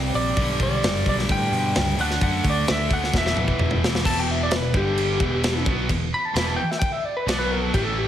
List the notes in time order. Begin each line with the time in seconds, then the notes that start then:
Already playing: C3 G3 C4 G5
0.14 A#1 D5, open hi-hat
0.37 B1 G2 D3 G3, kick, open hi-hat
0.59 B1 D5, kick, open hi-hat
0.83 F#1, snare, open hi-hat
1.06 B1 D5, kick, open hi-hat
1.19 snare
1.29 A2 G5, kick, open hi-hat
1.52 B2, open hi-hat
1.75 C#2, snare, open hi-hat
1.97 D2 D3 A3 D4 F#5, open hi-hat
2.11 snare
2.21 F#2 F#5, kick, open hi-hat
2.44 D2, kick, open hi-hat
2.50 D5
2.67 D2 E5, snare, open hi-hat
2.91 D2 F#5, kick, open hi-hat
3.04 snare
3.13 E1 E2 B2 E3 E5, kick, snare
3.26 snare
3.36 E1, mid tom
3.48 kick
3.59 E1, mid tom
3.71 mid tom
3.82 E1, snare
3.95 snare
4.05 E1 E2 B2 E3 A5, kick, crash
4.20 G5
4.31 E5
4.43 D5
4.51 E1 E2 B2 B4, snare, crash
4.74 G1 G2 D3 G3 G4, kick
4.98 crash
5.20 E1 E2 B2 E3, kick
5.43 snare, crash
5.66 B1 B2 F#3 B3, kick
5.89 E1 E2 B2, kick, crash
6.14 B5
6.25 A5
6.34 E1 E2 B2 E3 B5, snare, crash
6.46 A5
6.56 G5
6.71 E5, snare
6.79 G5, kick, crash
6.92 E5
7.05 D5
7.17 B4
7.27 B1 B2 F#3 B3 D5, snare, crash
7.39 B4
7.52 A#4
7.61 A4
7.74 A1 A2 E3 A3 G4, kick, crash
7.85 A4
7.98 G4